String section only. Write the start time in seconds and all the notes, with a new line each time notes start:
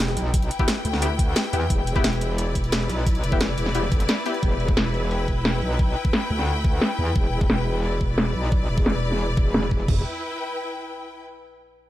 Already playing: E4 B4 G5
2.37 D5
5.10 G5
7.83 D5
9.89 E4
9.94 B4
9.99 G5